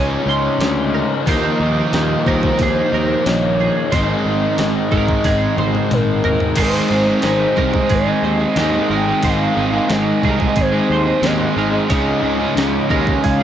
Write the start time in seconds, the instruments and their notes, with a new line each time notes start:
Already playing: fingered electric bass C#2, overdriven electric guitar C#3 G#3 C#4 D#4 G#4, clean electric guitar G#4, soft synth lead C#5
0.26 fingered electric bass C#2, overdriven electric guitar G#3 C#4 D#4, clean electric guitar C6
0.59 fingered electric bass D2, overdriven electric guitar C#3 G#3 C#4, snare, open hi-hat
0.63 overdriven electric guitar D#4
0.94 overdriven electric guitar G#3 C#4 D#4, clean electric guitar A#4
1.27 fingered electric bass D#2, overdriven electric guitar D#3 F3 A#3 D#4 F4 A#4, clean electric guitar C5, kick, open hi-hat
1.60 fingered electric bass D#2, overdriven electric guitar F3 A#3 D#4
1.92 fingered electric bass D#2, overdriven electric guitar D#3 F3 A#3 D#4, snare, open hi-hat
2.26 fingered electric bass D#2, overdriven electric guitar D#3 A#3 D#4, clean electric guitar A#4, soft synth lead C5, kick
2.43 kick
2.59 fingered electric bass D#2, clean electric guitar G#4, kick, open hi-hat
2.92 fingered electric bass D#2, overdriven electric guitar F3 A#3 D#4, clean electric guitar A#4
3.24 fingered electric bass A#1, overdriven electric guitar D#3 F3 A#3 D#4, soft synth lead C#5, snare, open hi-hat
3.58 overdriven electric guitar F3 A#3 D#4, clean electric guitar G#4
3.92 fingered electric bass G#1, overdriven electric guitar G#2 D#3 G#3 C4 D#4 G#4, clean electric guitar C5, soft synth lead D#5, kick, open hi-hat
4.25 fingered electric bass G#1, overdriven electric guitar G#3 C4 D#4
4.58 fingered electric bass G#1, overdriven electric guitar D#3 G#3 C4 D#4, snare, open hi-hat
4.91 fingered electric bass G#1, overdriven electric guitar G#2 D#3 G#3, clean electric guitar A#4, kick
5.08 kick
5.24 fingered electric bass G#1, clean electric guitar G#4, kick, snare, open hi-hat
5.57 fingered electric bass G#1, overdriven electric guitar G#3 C4 D#4, clean electric guitar C5, high tom
5.75 high tom
5.91 fingered electric bass G#1, overdriven electric guitar D#3 G#3 C4 D#4, soft synth lead A#4, open hi-hat, mid tom
6.24 overdriven electric guitar G#3 C4 D#4, clean electric guitar A#4, floor tom
6.40 floor tom
6.56 fingered electric bass G#1, overdriven electric guitar G#2 D#3 G#3 C4 D#4, clean electric guitar C5, kick, open hi-hat, crash
6.60 overdriven electric guitar G#4, soft synth lead C5
6.90 fingered electric bass G#1, overdriven electric guitar D#3 G#3 C4 D#4 G#4
7.07 overdriven electric guitar G#3 C4 D#4 G#4
7.22 fingered electric bass G#1, overdriven electric guitar G#2 D#3 G#3 C4 D#4, snare, open hi-hat
7.27 overdriven electric guitar G#4
7.56 fingered electric bass C2, overdriven electric guitar G#2 D#3 G#3 C4 D#4 G#4, clean electric guitar A#4, kick
7.73 overdriven electric guitar C4 D#4 G#4, muted overdriven electric guitar stroke, kick
7.89 fingered electric bass G#1, clean electric guitar G#4, kick, open hi-hat
7.95 soft synth lead D#5
8.06 overdriven electric guitar G#3 C4 D#4 G#4
8.22 fingered electric bass D#2, overdriven electric guitar D#3 G#3 C4 D#4, clean electric guitar C5
8.39 overdriven electric guitar C4 D#4 G#4, muted overdriven electric guitar stroke
8.56 fingered electric bass D#2, overdriven electric guitar G#2 D#3 G#3 C4 D#4 G#4, snare, open hi-hat
8.72 overdriven electric guitar C4 D#4 G#4
8.89 fingered electric bass G#1, overdriven electric guitar D#3 G#3 C4 D#4 G#4, clean electric guitar A#4
8.94 soft synth lead G5
9.06 overdriven electric guitar G#3 C4 D#4 G#4
9.23 fingered electric bass G#1, overdriven electric guitar G#2 D#3 G#3 C4 D#4 G#4, clean electric guitar C5, kick, open hi-hat
9.30 soft synth lead F5
9.55 fingered electric bass G#1, overdriven electric guitar D#3 G#3 C4 D#4
9.59 overdriven electric guitar G#4
9.72 overdriven electric guitar G#3 C4 D#4 G#4
9.88 fingered electric bass G#1, overdriven electric guitar G#2 D#3 G#3 C4 D#4, snare, open hi-hat
9.92 overdriven electric guitar G#4, soft synth lead D#5
10.22 fingered electric bass C2, overdriven electric guitar G#3 C4 D#4 G#4, clean electric guitar A#4, kick
10.27 overdriven electric guitar G#2 D#3
10.38 overdriven electric guitar C4 D#4 G#4, muted overdriven electric guitar stroke, kick
10.56 fingered electric bass G#1, clean electric guitar G#4, kick, open hi-hat
10.61 soft synth lead C5
10.72 overdriven electric guitar G#3 C4 D#4 G#4
10.88 fingered electric bass D#2, overdriven electric guitar D#3 G#3 C4 D#4, soft synth lead C5, clean electric guitar C5
11.06 overdriven electric guitar C4 D#4 G#4, muted overdriven electric guitar stroke
11.22 fingered electric bass D#2, overdriven electric guitar G#2 D#3 G#3 C4 D#4 G#4, snare, open hi-hat
11.26 soft synth lead D#5
11.38 overdriven electric guitar C4 D#4 G#4
11.56 fingered electric bass G#1, overdriven electric guitar D#3 G#3 C4 D#4 G#4, clean electric guitar A#4
11.71 overdriven electric guitar C4 D#4 G#4
11.75 overdriven electric guitar G#3
11.90 fingered electric bass C#2, overdriven electric guitar C#3 G#3 C#4 D#4 G#4, clean electric guitar C#5, soft synth lead D#5, kick, open hi-hat
12.21 fingered electric bass C#2, overdriven electric guitar C#3 G#3 C#4 D#4 G#4
12.39 overdriven electric guitar G#3 C#4 D#4 G#4
12.55 fingered electric bass C#2, overdriven electric guitar C#3 G#3 C#4 D#4 G#4, snare, open hi-hat
12.89 fingered electric bass D#2, overdriven electric guitar C#3 G#3 C#4 D#4, clean electric guitar A#4, kick
12.93 overdriven electric guitar G#4
13.05 overdriven electric guitar D#4 G#4, muted overdriven electric guitar stroke, kick
13.10 overdriven electric guitar C#4
13.23 fingered electric bass C#2, clean electric guitar G#4, soft synth lead F5, kick, open hi-hat
13.40 overdriven electric guitar D#4